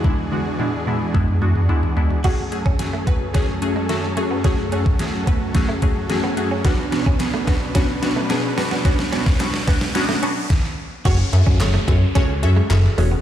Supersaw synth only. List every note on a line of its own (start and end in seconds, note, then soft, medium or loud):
0.00 2.20 E2 medium
0.00 2.20 E3 medium
0.00 2.20 D4 medium
0.00 2.20 F#4 medium
0.00 2.21 G#4 medium
2.24 6.61 F#2 medium
2.24 10.46 F#3 medium
2.24 10.46 C#4 medium
2.24 4.42 G#4 medium
2.24 6.61 A4 medium
4.45 6.63 F#4 medium
6.65 10.46 B2 medium
6.65 10.46 D4 medium
6.65 10.46 B4 medium